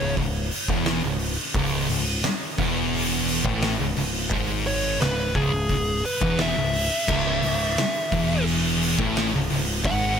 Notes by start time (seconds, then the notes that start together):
Already playing: C#5
0.00 C#1 C#2
0.17 C#1 C#2, kick, open hi-hat
0.51 open hi-hat
0.68 E1 E2, kick
0.85 snare, open hi-hat
1.03 C#1 C#2
1.19 open hi-hat
1.54 C#1 C#2, kick, open hi-hat
1.89 C#1 C#2, open hi-hat
2.23 muted distorted electric guitar stroke, muted picked electric bass stroke, snare, open hi-hat
2.58 E1 E2, kick, open hi-hat
2.93 open hi-hat
3.28 open hi-hat
3.45 A1 A2, kick
3.61 snare, open hi-hat
3.79 C#1 C#2
3.97 C#1 C#2, open hi-hat
4.31 G#1 G#2, kick, open hi-hat
4.66 C#5, open hi-hat
5.01 C#1 C#2 B4, snare, open hi-hat
5.35 C#1 C#2 G#4, kick, open hi-hat
5.52 C#1 C#2
5.69 C#1 C#2, kick, open hi-hat
6.05 B4, open hi-hat
6.21 E1 E2, kick
6.38 E5, snare, open hi-hat
6.56 C#1 C#2
6.73 open hi-hat
7.08 C#1 C#2, kick, crash
7.42 C#1 C#2, open hi-hat
7.77 muted distorted electric guitar stroke, muted picked electric bass stroke, snare, open hi-hat
8.12 E1 E2, kick, open hi-hat
8.47 open hi-hat
8.82 open hi-hat
8.99 A1 A2, kick
9.16 snare, open hi-hat
9.33 C#1 C#2
9.50 C#1 C#2, open hi-hat
9.84 G#1 G#2 F#5, kick, open hi-hat